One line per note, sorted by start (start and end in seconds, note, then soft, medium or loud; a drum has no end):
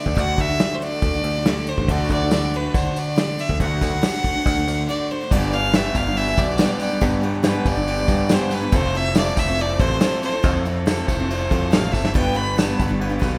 0.00 0.15 D3 medium
0.00 0.16 A3 medium
0.00 0.18 D4 medium
0.00 0.18 F#4 loud
0.00 0.15 F#4 soft
0.00 0.21 D5 medium
0.05 0.16 D2 medium
0.05 0.15 A3 soft
0.05 0.15 D4 soft
0.05 kick medium
0.15 0.36 D2 medium
0.15 0.35 D3 medium
0.15 0.36 A3 medium
0.15 0.37 D4 medium
0.15 0.38 F#4 medium
0.15 kick medium
0.15 ride medium
0.19 0.42 F#5 loud
0.36 0.57 D2 medium
0.36 0.48 D3 medium
0.36 0.48 A3 medium
0.36 0.48 D4 medium
0.36 0.47 F#4 medium
0.36 kick medium
0.36 ride medium
0.41 0.76 E5 loud
0.48 0.58 A3 medium
0.48 0.58 D4 soft
0.48 0.58 F#4 medium
0.58 0.79 D3 medium
0.58 0.80 A3 medium
0.58 0.80 D4 medium
0.58 0.81 F#4 medium
0.58 snare loud
0.58 ride medium
0.75 0.84 C5 medium
0.80 1.13 D3 medium
0.80 1.13 A3 medium
0.80 1.14 D4 medium
0.80 1.13 F#4 medium
0.80 1.70 D5 loud
0.80 ride medium
1.02 1.22 D2 medium
1.02 kick loud
1.02 ride medium
1.14 1.36 A3 soft
1.14 1.35 D4 soft
1.14 1.34 F#4 medium
1.24 1.72 D2 medium
1.24 ride medium
1.36 1.46 A3 soft
1.36 1.46 D4 medium
1.36 1.46 F#4 medium
1.45 1.67 D3 loud
1.45 1.68 A3 medium
1.45 1.68 D4 loud
1.45 1.68 F#4 loud
1.45 snare loud
1.45 ride medium
1.67 1.78 D3 medium
1.67 1.79 A3 medium
1.67 1.78 D4 medium
1.67 1.92 C5 medium
1.67 ride medium
1.71 1.77 F#4 medium
1.78 1.87 A1 medium
1.78 1.89 A3 soft
1.78 1.89 D4 soft
1.78 1.88 F#4 medium
1.78 kick medium
1.88 2.08 D2 medium
1.88 2.10 D3 medium
1.88 2.10 A3 medium
1.88 2.11 D4 medium
1.88 2.11 F#4 medium
1.88 2.11 D5 loud
1.88 kick loud
1.88 ride medium
2.09 2.67 D2 medium
2.09 2.21 D3 medium
2.09 2.21 A3 medium
2.09 2.22 D4 medium
2.09 2.58 D5 loud
2.09 kick medium
2.09 ride medium
2.09 tambourine medium
2.14 2.21 F#4 medium
2.23 2.32 A3 soft
2.23 2.32 D4 medium
2.23 2.32 F#4 medium
2.31 2.52 D3 medium
2.31 2.53 A3 medium
2.31 2.53 D4 medium
2.31 2.54 F#4 medium
2.31 snare loud
2.31 ride medium
2.31 tambourine medium
2.54 2.85 D3 medium
2.54 2.85 A3 medium
2.54 2.84 D4 medium
2.54 2.83 F#4 medium
2.54 2.79 B4 medium
2.54 ride medium
2.54 tambourine soft
2.74 3.41 D3 loud
2.74 3.00 C5 medium
2.74 kick loud
2.74 ride medium
2.74 tambourine medium
2.84 3.16 A3 soft
2.84 3.16 D4 soft
2.84 3.17 F#4 medium
2.96 3.42 D5 loud
2.96 ride medium
2.96 tambourine medium
3.16 3.36 D3 medium
3.16 3.37 A3 medium
3.16 3.38 D4 medium
3.16 3.38 F#4 medium
3.16 snare loud
3.16 ride medium
3.16 tambourine loud
3.37 3.48 D3 medium
3.37 3.49 A3 medium
3.37 3.49 D4 medium
3.37 3.47 F#4 medium
3.37 3.60 E5 medium
3.37 ride medium
3.37 tambourine medium
3.48 3.59 D2 medium
3.48 3.59 A3 soft
3.48 3.59 D4 soft
3.48 3.59 F#4 soft
3.48 kick medium
3.60 3.80 D2 loud
3.60 3.80 D3 medium
3.60 3.81 A3 medium
3.60 3.82 D4 medium
3.60 3.82 F#4 medium
3.60 4.85 F#5 loud
3.60 kick medium
3.60 ride medium
3.60 tambourine soft
3.81 4.01 D2 medium
3.81 3.92 D3 medium
3.81 3.92 A3 medium
3.81 3.90 D4 medium
3.81 3.89 F#4 medium
3.81 kick medium
3.81 snare soft
3.81 ride medium
3.81 tambourine medium
3.91 4.02 A3 soft
3.91 4.02 D4 medium
3.91 4.02 F#4 medium
4.01 4.21 D3 medium
4.01 4.23 A3 medium
4.01 4.23 D4 medium
4.01 4.24 F#4 medium
4.01 snare loud
4.01 ride loud
4.01 tambourine loud
4.23 4.34 D3 medium
4.23 4.35 A3 medium
4.23 4.35 D4 medium
4.23 4.33 F#4 medium
4.23 kick medium
4.23 ride medium
4.35 4.57 A3 soft
4.35 4.55 D4 medium
4.35 4.55 F#4 medium
4.46 4.65 D2 loud
4.46 kick loud
4.46 ride medium
4.46 tambourine medium
4.56 4.88 A3 medium
4.56 4.88 D4 medium
4.56 4.88 F#4 medium
4.68 4.86 D2 medium
4.68 ride medium
4.68 tambourine medium
4.89 5.10 D3 loud
4.89 5.10 A3 medium
4.89 5.11 D4 loud
4.89 5.11 F#4 loud
4.89 5.12 D5 medium
5.11 5.21 D3 medium
5.11 5.21 A3 medium
5.11 5.22 D4 medium
5.11 5.20 F#4 medium
5.11 5.33 C5 medium
5.21 5.32 A3 medium
5.21 5.32 D4 medium
5.21 5.31 F#4 medium
5.31 5.89 G1 loud
5.31 5.53 G2 medium
5.31 5.53 D3 medium
5.31 5.50 G3 medium
5.31 5.52 B3 medium
5.31 5.52 D4 medium
5.31 5.53 G4 medium
5.31 5.55 D5 loud
5.31 kick loud
5.31 crash loud
5.31 tambourine medium
5.31 crash medium
5.52 5.73 G3 medium
5.52 5.74 B3 medium
5.52 5.74 D4 medium
5.52 5.74 G4 medium
5.52 5.77 F5 loud
5.52 crash soft
5.73 5.85 G2 medium
5.73 5.85 D3 medium
5.73 5.85 G3 medium
5.73 5.85 B3 medium
5.73 5.84 D4 medium
5.73 5.84 G4 medium
5.73 5.98 E5 loud
5.73 snare loud
5.73 tambourine loud
5.73 crash medium
5.85 6.07 G3 soft
5.85 6.07 B3 soft
5.85 6.06 D4 medium
5.85 6.05 G4 medium
5.94 6.33 G1 loud
5.94 6.14 G3 medium
5.94 6.15 B3 medium
5.94 6.16 D4 medium
5.94 6.17 G4 medium
5.94 6.18 F5 loud
5.94 kick medium
5.94 tambourine medium
5.94 crash medium
6.07 6.28 G3 soft
6.07 6.28 B3 soft
6.07 6.27 D4 medium
6.07 6.26 G4 medium
6.15 6.37 G3 medium
6.15 6.36 B3 medium
6.15 6.36 D4 medium
6.15 6.35 G4 medium
6.15 6.40 E5 loud
6.15 crash medium
6.28 6.36 G3 soft
6.28 6.38 B3 soft
6.28 6.38 D4 soft
6.28 6.38 G4 medium
6.37 6.57 B1 medium
6.37 6.82 G2 medium
6.37 6.81 D3 medium
6.37 6.59 G3 medium
6.37 6.59 B3 medium
6.37 6.60 D4 medium
6.37 6.59 G4 medium
6.37 6.81 D5 loud
6.37 kick loud
6.37 tambourine medium
6.37 crash medium
6.58 6.81 G2 medium
6.58 6.81 D3 medium
6.58 6.79 G3 loud
6.58 6.80 B3 medium
6.58 6.80 D4 loud
6.58 6.80 G4 loud
6.58 snare loud
6.58 tambourine loud
6.58 crash medium
6.80 6.91 G3 medium
6.80 6.90 B3 medium
6.80 6.90 D4 medium
6.80 6.89 G4 medium
6.80 7.21 D5 medium
6.80 tambourine medium
6.80 crash medium
6.90 7.00 G3 soft
6.90 7.00 B3 soft
6.90 7.00 D4 medium
6.90 7.00 G4 soft
7.01 7.23 G2 medium
7.01 7.59 G2 loud
7.01 7.23 D3 medium
7.01 7.20 G3 medium
7.01 7.22 B3 medium
7.01 7.22 D4 loud
7.01 7.22 G4 medium
7.01 kick loud
7.01 tambourine medium
7.01 crash medium
7.22 7.43 G3 medium
7.22 7.43 B3 medium
7.22 7.43 D4 medium
7.22 7.43 G4 medium
7.22 crash medium
7.26 7.44 G3 medium
7.33 snare soft
7.43 7.55 G2 medium
7.43 7.55 D3 medium
7.43 7.54 G3 medium
7.43 7.54 B3 medium
7.43 7.53 D4 medium
7.43 7.52 G4 medium
7.43 snare loud
7.43 tambourine loud
7.43 crash medium
7.47 7.69 B4 medium
7.53 7.77 G3 soft
7.53 7.76 B3 medium
7.53 7.76 D4 medium
7.53 7.74 G4 medium
7.65 8.04 G1 loud
7.65 7.85 G3 medium
7.65 7.87 B3 medium
7.65 7.87 D4 medium
7.65 7.89 G4 medium
7.65 8.35 D5 loud
7.65 kick medium
7.65 tambourine medium
7.65 crash medium
7.76 7.98 G3 soft
7.76 7.98 B3 medium
7.76 7.97 D4 medium
7.76 7.96 G4 medium
7.87 8.09 G3 medium
7.87 8.08 B3 medium
7.87 8.07 D4 medium
7.87 8.07 G4 medium
7.87 crash medium
7.97 8.07 G3 soft
7.97 8.08 B3 soft
7.97 8.08 D4 medium
7.97 8.09 G4 medium
8.08 8.66 G2 medium
8.08 8.53 G2 medium
8.08 8.53 D3 medium
8.08 8.30 G3 medium
8.08 8.30 B3 medium
8.08 8.31 D4 medium
8.08 8.31 G4 medium
8.08 kick loud
8.08 tambourine medium
8.08 crash medium
8.29 8.52 G2 medium
8.29 8.52 D3 medium
8.29 8.49 G3 medium
8.29 8.51 B3 loud
8.29 8.51 D4 loud
8.29 8.52 G4 medium
8.29 snare loud
8.29 tambourine loud
8.29 crash medium
8.34 8.55 C5 medium
8.50 8.62 G3 medium
8.50 8.61 B3 medium
8.50 8.60 D4 medium
8.50 8.59 G4 medium
8.50 8.77 B4 loud
8.50 tambourine medium
8.50 crash medium
8.61 8.72 G3 soft
8.61 8.72 B3 soft
8.61 8.73 D4 medium
8.61 8.72 G4 medium
8.72 9.30 F1 loud
8.72 8.93 F3 medium
8.72 8.94 C4 medium
8.72 8.94 E4 medium
8.72 8.94 A4 medium
8.72 8.98 C5 loud
8.72 kick loud
8.72 tambourine medium
8.72 crash medium
8.94 9.14 F3 medium
8.94 9.15 C4 medium
8.94 9.16 E4 medium
8.94 9.16 A4 medium
8.94 9.17 E5 loud
8.94 crash medium
9.15 9.26 F3 medium
9.15 9.27 C4 medium
9.15 9.27 E4 medium
9.15 9.25 A4 medium
9.15 9.40 D5 loud
9.15 snare loud
9.15 tambourine loud
9.15 crash medium
9.27 9.48 C4 soft
9.27 9.48 E4 soft
9.27 9.47 A4 medium
9.37 9.75 F1 medium
9.37 9.58 C4 medium
9.37 9.59 E4 medium
9.37 9.60 A4 medium
9.37 9.63 E5 loud
9.37 kick medium
9.37 tambourine loud
9.37 crash medium
9.48 9.70 C4 soft
9.48 9.69 E4 medium
9.48 9.68 A4 medium
9.58 9.82 F3 medium
9.58 9.81 C4 medium
9.58 9.80 E4 medium
9.58 9.79 A4 medium
9.58 9.82 D5 loud
9.58 crash medium
9.69 9.80 C4 medium
9.69 9.80 E4 soft
9.69 9.80 A4 medium
9.79 9.99 A1 medium
9.79 9.99 F3 medium
9.79 10.00 C4 medium
9.79 10.01 E4 medium
9.79 10.02 A4 medium
9.79 10.23 C5 loud
9.79 kick loud
9.79 tambourine medium
9.79 crash medium
10.01 10.21 F3 medium
10.01 10.22 C4 medium
10.01 10.22 E4 medium
10.01 10.23 A4 loud
10.01 snare loud
10.01 tambourine loud
10.01 crash medium
10.22 10.33 F3 medium
10.22 10.34 C4 medium
10.22 10.32 E4 medium
10.22 10.32 A4 medium
10.22 10.64 C5 medium
10.22 tambourine medium
10.22 crash medium
10.33 10.42 C4 soft
10.33 10.43 E4 medium
10.33 10.43 A4 medium
10.43 11.01 F2 loud
10.43 10.64 F3 medium
10.43 10.64 C4 medium
10.43 10.65 E4 medium
10.43 10.65 A4 medium
10.43 kick loud
10.43 tambourine medium
10.43 crash medium
10.65 10.84 F3 medium
10.65 10.85 C4 medium
10.65 10.85 E4 medium
10.65 10.86 A4 medium
10.65 tambourine soft
10.65 crash soft
10.76 snare soft
10.86 10.97 F3 medium
10.86 10.97 C4 medium
10.86 10.97 E4 medium
10.86 10.95 A4 medium
10.86 11.08 A4 medium
10.86 snare loud
10.86 tambourine loud
10.86 crash medium
10.96 11.19 C4 medium
10.96 11.18 E4 medium
10.96 11.18 A4 medium
11.06 11.46 F1 medium
11.06 11.29 E4 medium
11.06 11.30 A4 medium
11.06 11.74 C5 medium
11.06 kick medium
11.06 tambourine medium
11.06 crash medium
11.11 11.28 C4 medium
11.19 11.41 C4 medium
11.19 11.40 E4 medium
11.19 11.39 A4 medium
11.28 11.51 F3 medium
11.28 11.51 C4 medium
11.28 11.50 E4 medium
11.28 11.48 A4 medium
11.28 tambourine soft
11.28 crash medium
11.40 11.49 C4 soft
11.40 11.50 E4 soft
11.40 11.51 A4 medium
11.50 11.70 F2 medium
11.50 11.70 F3 medium
11.50 11.71 C4 medium
11.50 11.71 E4 medium
11.50 11.72 A4 medium
11.50 kick loud
11.50 tambourine medium
11.50 crash medium
11.71 11.92 A1 medium
11.71 11.90 F3 medium
11.71 11.90 C4 loud
11.71 11.92 E4 loud
11.71 11.91 A4 medium
11.71 11.94 F5 medium
11.71 snare loud
11.71 tambourine medium
11.71 crash medium
11.91 12.13 G1 medium
11.91 12.03 F3 medium
11.91 12.03 C4 soft
11.91 12.03 E4 medium
11.91 12.02 A4 medium
11.91 12.14 E5 medium
11.91 kick medium
11.91 tambourine medium
12.03 12.15 C4 soft
12.03 12.15 E4 soft
12.03 12.15 A4 medium
12.03 snare medium
12.14 12.72 G1 loud
12.14 12.36 G2 medium
12.14 12.36 D3 medium
12.14 12.33 G3 medium
12.14 12.34 B3 medium
12.14 12.34 D4 loud
12.14 12.35 G4 loud
12.14 12.36 B4 loud
12.14 12.38 G5 loud
12.14 kick loud
12.14 tambourine medium
12.14 crash medium
12.34 12.55 G3 medium
12.34 12.56 B3 medium
12.34 12.56 D4 medium
12.34 12.56 G4 medium
12.34 12.59 B4 medium
12.34 12.60 B5 loud
12.34 crash medium
12.55 12.67 G2 medium
12.55 12.68 D3 medium
12.55 12.67 G3 medium
12.55 12.67 B3 medium
12.55 12.66 D4 medium
12.55 12.65 G4 medium
12.55 12.79 A5 medium
12.55 snare loud
12.55 tambourine medium
12.55 crash medium
12.60 12.78 B4 loud
12.66 12.89 G3 soft
12.66 12.88 B3 medium
12.66 12.88 D4 medium
12.66 12.87 G4 medium
12.78 13.17 G1 loud
12.78 13.01 B3 medium
12.78 12.99 D4 medium
12.78 13.02 B4 medium
12.78 kick medium
12.78 tambourine medium
12.78 crash medium
12.88 13.11 G3 medium
12.88 13.10 B3 medium
12.88 13.09 D4 medium
12.88 13.08 G4 medium
12.99 13.21 G3 medium
12.99 13.20 B3 medium
12.99 13.21 D4 medium
12.99 13.19 B4 medium
12.99 crash medium
13.10 13.18 G3 soft
13.10 13.19 B3 medium
13.10 13.20 D4 medium
13.10 13.20 G4 medium
13.19 13.38 B1 medium
13.19 13.38 G3 medium
13.19 13.38 B3 medium
13.19 13.38 D4 medium
13.19 13.38 G4 medium
13.19 13.38 B4 medium
13.19 kick medium
13.19 tambourine medium
13.19 crash medium